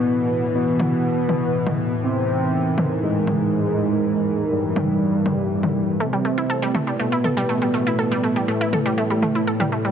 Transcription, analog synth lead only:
\new Staff \with { instrumentName = "Analog synth lead" } { \time 4/4 \key a \minor \tempo 4 = 121 b4 b2. | bis2 gis2~ | gis4 g2. | c'2 b2~ |
b4 a2. | }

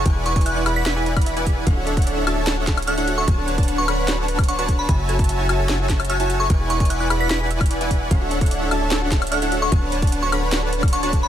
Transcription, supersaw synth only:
\new Staff \with { instrumentName = "Supersaw synth" } { \time 4/4 \key e \mixolydian \tempo 4 = 149 <e' b' d'' gis''>8. <e' b' d'' fis'' gis''>8. <e' b' d'' fis'' b''>8. <e' b' d'' fis'' gis''>8 <e' b' b''>8 <e' b' d'' fis'' gis''>8. | <d' a' cis'' e'' fis''>8. <d' a' cis'' e'' fis''>8. <d' a' cis'' e'' a''>8. <d' a' cis'' e'' fis''>4 <d' a' cis'' e'' fis''>8. | <d' b' fis''>8. <d' b' a''>8. <d' b' cis'' fis'' b''>8. <d' b' cis'' fis'' a''>4 <d' b' cis'' fis'' a''>8. | <fis' cis'' e'' gis'' a''>8. <fis' cis'' e'' gis'' a''>8. <fis' cis'' e'' gis'' a''>8. <fis' cis'' e'' gis'' a''>4 <fis' cis'' e'' gis'' a''>8. |
<e' b' d'' fis''>8. <e' b' d''>8. <e' b' d'' fis'' b''>8. <e' b' d'' fis'' gis''>4 <e' b' d'' fis'' gis''>8. | <d' a' cis'' e'' fis''>8. <a' fis''>8. <d' a' cis'' e'' a''>8. <d' a' cis'' e'' fis''>4 <d' a' cis'' e'' fis''>8. | <d' b' cis'' fis'' a''>8. <d' b' cis'' fis'' a''>8. <d' b' cis'' fis'' b''>8. <d' b' cis'' fis'' a''>4 <d' b' cis'' fis'' a''>8. | }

